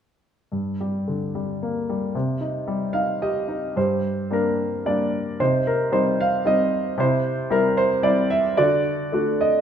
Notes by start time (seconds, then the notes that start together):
0.52 G2
0.80 G3
1.08 D3
1.35 G3
1.62 A#3
1.89 G3
2.15 C3
2.41 D#4
2.67 G3
2.93 D#4 F5
3.22 G4 D#5
3.48 D#4
3.76 G2 G4 C5
4.30 G3 A#3 D4 A#4
4.86 G3 A#3 D4 D5
5.40 C3 D#4 C5
5.67 A#4
5.92 G3 C4 D#4 C5
6.20 F5
6.45 G3 C4 D#4 D#5
6.98 C3 E4 C5
7.50 G3 C4 E4 A#4
7.77 C5
8.03 G3 C4 E4 D5
8.30 E5
8.57 D3 F#4 D5
9.12 A3 D4 F#4
9.41 D#5